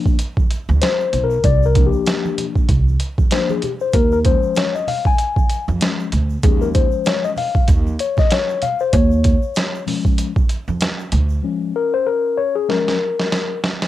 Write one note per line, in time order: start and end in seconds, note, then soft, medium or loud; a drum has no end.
0.00 0.16 F3 soft
0.00 0.16 A#3 soft
0.00 0.16 D4 medium
0.06 kick medium
0.06 shaker soft
0.19 closed hi-hat medium
0.19 shaker medium
0.37 kick medium
0.37 high conga soft
0.37 shaker soft
0.50 closed hi-hat medium
0.50 shaker soft
0.69 0.79 D2 loud
0.69 high conga medium
0.69 shaker soft
0.81 1.24 C5 loud
0.81 snare loud
0.81 closed hi-hat loud
0.81 shaker medium
1.00 shaker soft
1.13 1.39 B1 medium
1.13 closed hi-hat medium
1.13 low conga medium
1.13 shaker soft
1.24 1.45 A#4 medium
1.30 shaker soft
1.43 1.85 C2 loud
1.43 1.66 D5 loud
1.43 kick loud
1.43 closed hi-hat loud
1.43 shaker medium
1.63 1.87 A#4 medium
1.63 shaker soft
1.75 2.65 F3 medium
1.75 2.65 A#3 soft
1.75 2.65 D4 medium
1.75 kick loud
1.75 closed hi-hat medium
1.75 high conga soft
1.75 low conga medium
1.75 shaker soft
1.86 2.45 G4 medium
1.93 shaker soft
2.06 snare loud
2.06 closed hi-hat medium
2.06 shaker medium
2.25 high conga medium
2.25 shaker soft
2.38 closed hi-hat medium
2.38 low conga medium
2.38 shaker soft
2.55 kick medium
2.55 shaker soft
2.69 2.95 C2 medium
2.69 kick medium
2.69 closed hi-hat medium
2.69 shaker medium
2.88 high conga soft
2.88 shaker soft
3.00 closed hi-hat medium
3.00 shaker soft
3.18 kick loud
3.18 high conga medium
3.18 shaker soft
3.31 3.59 F3 medium
3.31 3.60 A#3 soft
3.31 3.60 D4 medium
3.31 3.51 C5 medium
3.31 snare loud
3.31 closed hi-hat loud
3.31 shaker medium
3.50 3.63 G#4 medium
3.50 high conga medium
3.50 shaker soft
3.62 3.71 G4 medium
3.62 closed hi-hat medium
3.62 low conga medium
3.62 shaker soft
3.80 3.95 C5 medium
3.80 shaker soft
3.92 4.35 D#2 loud
3.92 4.11 A#4 medium
3.92 kick loud
3.92 closed hi-hat loud
3.92 shaker medium
4.12 4.18 A#4 medium
4.12 shaker soft
4.24 4.68 F3 medium
4.24 4.69 G#3 medium
4.24 4.69 C#4 medium
4.24 4.58 C5 medium
4.24 kick loud
4.24 closed hi-hat medium
4.24 shaker soft
4.42 shaker soft
4.55 4.74 C#5 medium
4.55 snare loud
4.55 closed hi-hat medium
4.55 shaker medium
4.75 4.88 D#5 medium
4.75 shaker soft
4.87 5.07 F5 medium
4.87 open hi-hat medium
4.87 low conga medium
4.87 shaker soft
5.05 5.65 G#5 loud
5.05 kick medium
5.05 shaker soft
5.18 closed hi-hat medium
5.18 shaker medium
5.36 kick medium
5.36 high conga soft
5.36 shaker soft
5.49 closed hi-hat medium
5.49 shaker medium
5.68 5.79 F2 loud
5.68 high conga medium
5.68 shaker soft
5.81 6.09 F3 soft
5.81 6.09 G#3 soft
5.81 6.10 C#4 medium
5.81 snare loud
5.81 closed hi-hat loud
5.81 shaker medium
5.99 shaker soft
6.12 6.38 D2 medium
6.12 closed hi-hat medium
6.12 low conga medium
6.12 shaker soft
6.30 shaker soft
6.43 6.85 D#2 loud
6.43 7.33 F3 medium
6.43 7.34 G#3 medium
6.43 7.34 C#4 medium
6.43 6.63 G#4 medium
6.43 kick loud
6.43 closed hi-hat medium
6.43 shaker medium
6.62 6.68 A#4 medium
6.62 shaker soft
6.74 7.07 C5 medium
6.74 kick medium
6.74 closed hi-hat medium
6.74 shaker soft
6.92 shaker soft
7.05 7.23 C#5 medium
7.05 snare loud
7.05 closed hi-hat medium
7.05 shaker medium
7.24 7.31 D#5 medium
7.24 shaker soft
7.37 7.67 F5 medium
7.37 open hi-hat medium
7.37 low conga medium
7.37 shaker soft
7.55 kick medium
7.55 shaker soft
7.68 7.94 D#2 loud
7.68 kick medium
7.68 closed hi-hat medium
7.68 shaker medium
7.87 high conga soft
7.87 shaker soft
7.99 8.19 C#5 medium
7.99 closed hi-hat medium
7.99 shaker medium
8.17 8.32 D#5 loud
8.17 kick loud
8.17 snare soft
8.17 high conga medium
8.17 shaker soft
8.30 8.64 C#5 loud
8.30 snare loud
8.30 closed hi-hat loud
8.30 shaker medium
8.49 shaker soft
8.62 8.81 F5 loud
8.62 closed hi-hat medium
8.62 low conga medium
8.62 shaker soft
8.79 8.94 C5 medium
8.79 shaker soft
8.93 9.35 D#2 loud
8.93 9.83 C#5 medium
8.93 kick loud
8.93 closed hi-hat loud
8.93 shaker medium
9.11 shaker soft
9.24 kick loud
9.24 closed hi-hat medium
9.24 shaker soft
9.42 shaker soft
9.55 snare loud
9.55 closed hi-hat loud
9.55 shaker medium
9.75 shaker soft
9.86 10.31 F3 medium
9.86 10.31 G#3 medium
9.86 10.31 C#4 medium
9.86 open hi-hat medium
9.86 low conga soft
9.86 shaker soft
10.05 kick medium
10.05 shaker soft
10.18 closed hi-hat medium
10.18 shaker medium
10.36 kick medium
10.36 high conga soft
10.36 shaker soft
10.49 closed hi-hat medium
10.49 shaker medium
10.68 10.79 F2 medium
10.68 high conga medium
10.68 shaker soft
10.80 snare loud
10.80 closed hi-hat loud
10.80 shaker medium
10.99 shaker soft
11.12 11.38 D2 loud
11.12 closed hi-hat medium
11.12 low conga medium
11.12 shaker soft
11.29 shaker soft
11.43 11.72 F3 medium
11.43 11.72 G#3 soft
11.43 12.68 C#4 medium
11.76 11.92 A#4 medium
11.94 12.07 C5 loud
12.06 12.39 A#4 medium
12.37 12.54 C#5 loud
12.55 12.68 G#4 loud
12.68 12.97 F3 medium
12.68 12.97 G#3 soft
12.68 12.97 C#4 medium
12.68 13.59 A#4 medium
12.68 snare medium
12.88 snare medium
13.20 snare medium
13.32 snare loud
13.64 snare loud
13.82 snare medium